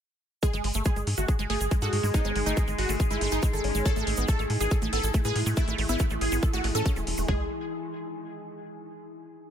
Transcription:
0.43 G#3 D#4 G#4, kick, closed hi-hat, shaker
0.53 G#1 G#3, closed hi-hat, shaker
0.59 G#5
0.64 G#1 G#3, open hi-hat
0.74 G#1 A3, closed hi-hat, shaker
0.85 G#3 G#4, kick, closed hi-hat, shaker
0.91 G#4
0.96 G#1 G#3, closed hi-hat, shaker
1.07 G#2, open hi-hat
1.17 G#1 A3 F#4, closed hi-hat, shaker
1.28 G#4, kick, closed hi-hat, shaker
1.39 G#1 G#3, closed hi-hat, shaker
1.50 G#1 A3 G#4, open hi-hat
1.61 G#1 G#4, closed hi-hat, shaker
1.71 G#3, kick, closed hi-hat, shaker
1.81 G#2 F#4 A4, closed hi-hat, shaker
1.93 G#2, open hi-hat
2.03 G#2 G#3, shaker
2.14 G#3 B3 D#4, kick, closed hi-hat, shaker
2.25 G#1 G#3 B3, closed hi-hat, shaker
2.36 G#1 G#3, open hi-hat
2.46 G#1 A3 D#4, closed hi-hat, shaker
2.57 G#3, kick, closed hi-hat, shaker
2.68 G#1 G#3, closed hi-hat, shaker
2.78 G#1 F#4, open hi-hat
2.89 G#1 A3, open hi-hat, shaker
3.00 G#4, kick, closed hi-hat, shaker
3.10 G#1 G#3 E4, closed hi-hat, shaker
3.21 G#1 A3, open hi-hat
3.32 G#1 D#4 G#4, closed hi-hat, shaker
3.43 G#3, kick, closed hi-hat, shaker
3.53 G#1 A4, closed hi-hat, shaker
3.64 G#1 C#4, open hi-hat
3.75 G#1 G#3, shaker
3.86 A3 E4 A4, kick, closed hi-hat, shaker
3.96 A1 A3, closed hi-hat, shaker
4.07 A1 A3, open hi-hat
4.17 A1 B3, closed hi-hat, shaker
4.28 A3 A4, kick, closed hi-hat, shaker
4.39 A1 A3, closed hi-hat, shaker
4.50 A2, open hi-hat
4.61 A1 B3 G#4, closed hi-hat, shaker
4.71 A4, kick, closed hi-hat, shaker
4.82 A1 A3, closed hi-hat, shaker
4.93 A1 B3 A4, open hi-hat
5.03 A1 A4, closed hi-hat, shaker
5.14 A3, kick, closed hi-hat, shaker
5.24 A2 G#4 B4, closed hi-hat, shaker
5.36 A2, open hi-hat
5.46 A2 A3, shaker
5.57 A3 E4, kick, closed hi-hat, shaker
5.68 A1 A3, closed hi-hat, shaker
5.78 A1 A3, open hi-hat
5.89 A1 B3 E4, closed hi-hat, shaker
5.99 A3, kick, closed hi-hat, shaker
6.10 A1 A3, closed hi-hat, shaker
6.21 A1 G#4, open hi-hat
6.32 A1 B3, open hi-hat, shaker
6.43 A4, kick, closed hi-hat, shaker
6.53 A1 A3 F#4, closed hi-hat, shaker
6.64 A1 A3, open hi-hat
6.75 A2 C#4 A4, shaker
6.86 C#4, kick, closed hi-hat, shaker
6.96 E1 A3, closed hi-hat, shaker
7.07 E1, open hi-hat
7.17 E1 A3, shaker
7.28 G#1 G#3 D#4 G#4, kick, floor tom
7.35 G#4
7.41 G#5

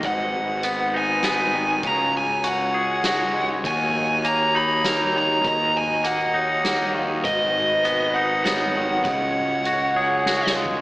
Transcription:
Already playing: D#4
0.03 G#1 G#2 G#3 F#4 B4 F#5, kick, closed hi-hat
0.63 B3, closed hi-hat
0.94 D#4 G#5
1.23 B3, snare, closed hi-hat
1.27 G#5
1.54 D#3
1.83 C#2 C#3 C#4 C#5, kick, closed hi-hat
1.87 A#5
2.17 G#5
2.44 F#4, closed hi-hat
2.48 F#5
2.74 G#4
3.04 F#4 F#5, snare, closed hi-hat
3.34 G#3
3.64 D#2 A#3 D#4 G#5, kick, closed hi-hat
3.94 D#5
4.23 A#3 C#5 A#5, closed hi-hat
4.55 D#4 B5
4.84 A#3 C#5 A#5, snare, closed hi-hat
5.15 D#3 A#5
5.44 D#2 D#5 A#5, kick, closed hi-hat
5.75 D#5 G#5
6.04 A#3 F#5, closed hi-hat
6.34 D#4 C#5
6.64 A#3, snare, closed hi-hat
6.94 D#3 F5
7.25 G#1 G#2 G#3 B4 D#5, kick, closed hi-hat
7.55 D#5
7.84 B3 B4, closed hi-hat
8.14 D#4 F#5
8.44 B3 C#5 F#5, snare, closed hi-hat
8.77 D#3
9.04 C#2 C#3 C#4 C#5 D#5 F#5, kick, closed hi-hat
9.35 D#5
9.65 F#4, closed hi-hat
9.95 G#4 C#5
10.26 F#4, snare
10.46 snare
10.56 G#3 F5
10.66 kick

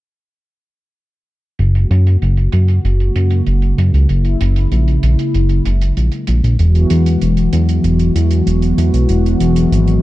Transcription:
1.59 F#1, closed hi-hat
1.75 closed hi-hat
1.91 F#2, closed hi-hat
2.07 closed hi-hat
2.22 F#1, closed hi-hat
2.37 closed hi-hat
2.52 F#2, closed hi-hat
2.68 closed hi-hat
2.84 F#1, closed hi-hat
3.00 closed hi-hat
3.16 F#2, closed hi-hat
3.31 closed hi-hat
3.47 F#1, closed hi-hat
3.62 closed hi-hat
3.78 F#2, closed hi-hat
3.94 C#2, closed hi-hat
4.09 F#1 E4, closed hi-hat
4.25 closed hi-hat
4.41 F#1, closed hi-hat
4.56 closed hi-hat
4.72 A#1, closed hi-hat
4.88 closed hi-hat
5.03 A#1, closed hi-hat
5.19 closed hi-hat
5.34 F#1, closed hi-hat
5.49 closed hi-hat
5.65 F#1, closed hi-hat
5.81 closed hi-hat
5.97 A#1, closed hi-hat
6.12 closed hi-hat
6.27 A#1, closed hi-hat
6.44 A#1, closed hi-hat
6.59 E1 E3 F#3 B3 F#4, closed hi-hat
6.75 closed hi-hat
6.90 E2, closed hi-hat
7.06 closed hi-hat
7.21 E1, closed hi-hat
7.37 closed hi-hat
7.53 E2, closed hi-hat
7.69 closed hi-hat
7.84 E1, closed hi-hat
7.99 closed hi-hat
8.15 E2, closed hi-hat
8.31 closed hi-hat
8.47 E1, closed hi-hat
8.62 closed hi-hat
8.78 E2, closed hi-hat
8.94 B1, closed hi-hat
9.09 E1, closed hi-hat
9.26 closed hi-hat
9.40 E1, closed hi-hat
9.56 closed hi-hat
9.72 G#1, closed hi-hat
9.88 closed hi-hat

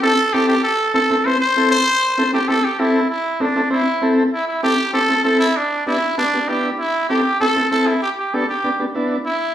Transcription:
0.02 C4 E4 A4
0.33 C4 E4 G4 A4
0.48 G4
0.64 A4
0.94 C4 E4 A4
1.10 C4 E4 A4
1.25 C4 E4 B4 C5
1.41 C5
1.56 C4 E4 A4
1.71 C5
2.18 C4 E4 A4
2.33 C4 E4 G4 A4
2.48 C4 E4 A4
2.64 G4
2.79 C4 E4 A4
3.10 E4
3.40 C4 D4 E4 A4
3.56 C4 E4 A4
3.70 C4 E4 C5
4.01 C4 E4 A4
4.33 E4
4.48 E4
4.63 C4 E4 G4 A4
4.93 C4 E4 A4 C5
5.09 C4 E4 A4
5.23 C4 E4 A4
5.40 E4
5.56 D4
5.86 B3 D4 E4 G4
6.18 B3 D4 G4
6.33 B3 D4 G4
6.48 B3 D4 E4 G4
6.79 E4
7.09 C4 E4 G4 A4
7.40 C4 E4 A4
7.56 C4 E4 A4
7.71 C4 E4 A4
7.87 E4
8.02 G4
8.18 G4
8.34 B3 D4 G4 A4
8.49 G4
8.64 B3 D4 G4
8.79 B3 D4 G4
8.95 B3 D4 E4
9.26 E4

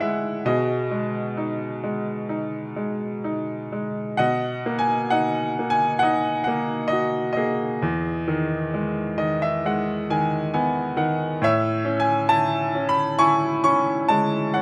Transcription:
Already playing: A2 G#3 C#4 E4 F#5 G#5
0.00 G#3 E5
0.45 B2 F#4 G#4 D#5
0.91 G#3
1.37 D#4
1.84 G#3
2.29 D#4
2.76 G#3
3.24 D#4
3.72 G#3
4.17 B2 D#5 F#5
4.66 A#3
4.79 G#5
5.10 D#4 F#5
5.59 A#3
5.70 G#5
5.99 D#5 F#5
6.03 D#4
6.44 A#3 F#5
6.88 D#5
6.92 F#4
7.33 D#5
7.37 A#3 G#4
7.82 E2
8.28 D#3
8.74 G#3
9.18 D#3 D#5
9.42 E5
9.66 G#3 F#5
10.10 D#3 G#5
10.54 B3 G#5
10.97 D#3 F#5
11.42 A2 C#5 E5
11.85 C#4
12.00 G#5
12.29 E4 A5
12.75 C#4
12.89 B5
13.19 E4 G#5 C#6
13.64 C#4 C#6
14.09 G#3 A5
14.54 C#4 F#5

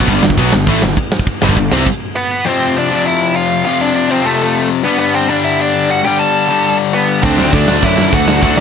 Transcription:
0.00 kick
0.08 G1 G2 D3 G3, kick, ride
0.23 G1 G2 D3, snare
0.30 kick
0.37 B1 B2 F#3 B3, kick, ride
0.52 G1 G2 D3, snare
0.67 A1 A2 E3 A3, kick, ride
0.82 G1 G2 D3, snare
0.97 muted picked electric bass stroke, muted overdriven electric guitar stroke, muted distorted electric guitar stroke, kick, ride
1.12 snare
1.19 kick
1.27 kick, ride
1.42 G1 G2 D3 G3, snare
1.49 kick
1.57 G1 G2 D3, kick, ride
1.71 C2 C3 G3 C4, snare
1.87 kick, crash
2.16 B3 B4
2.45 F2 C3 F3 C4 C5
2.78 D4 D5
2.91 C3 F3
2.95 F2
3.07 E4 E5
3.36 F4 F5
3.65 F2 C3 F3 F4 F5
3.81 D4 D5
3.95 D4 D5
4.09 C3 F3 C4 C5
4.13 F2
4.26 A3 A4
4.83 G2 D3 G3 B3 B4
4.99 B3 B4
5.15 C4 C5
5.28 G2 D3 G3 D4 D5
5.44 E4 E5
5.60 D4 D5
5.90 F#4 F#5
6.04 G2 D3 G3 G4 G5
6.19 A4 A5
6.48 G2 D3 G3
6.94 B3 B4
7.22 D2 D3 F#3 A3 C4 D4 C5, kick, crash
7.38 D2 D3 F#3 A3 D4, snare
7.53 D2 D3 F#3 A3 D4 D5, kick, crash
7.68 D2 D3 F#3 A3 D4, snare
7.82 F#2 D3 F#3 A3 D4 E4 E5, kick, crash
7.97 F#2 D3 F#3 A3 D4, snare
8.12 D2 D3 F#3 A3 D4 F#4 F#5, kick, crash
8.27 D3 F#3 A3 D4, snare
8.42 D2 D3 F#3 A3 D4 F#4 F#5, kick, crash
8.57 D2 D4

